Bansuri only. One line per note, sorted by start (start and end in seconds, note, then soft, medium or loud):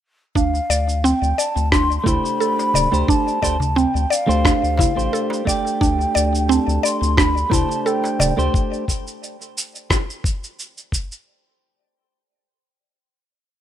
0.36 1.07 F5 medium
1.05 1.40 G5 medium
1.39 1.72 A5 medium
1.73 1.98 C6 loud
1.99 2.08 C6 medium
2.07 3.11 B5 loud
3.09 3.80 A5 loud
3.78 4.14 G5 medium
4.12 5.21 F5 loud
5.48 6.52 G5 medium
6.51 6.86 A5 medium
6.84 7.20 C6 loud
7.19 7.54 B5 medium
7.53 7.88 A5 medium
7.87 8.54 G5 medium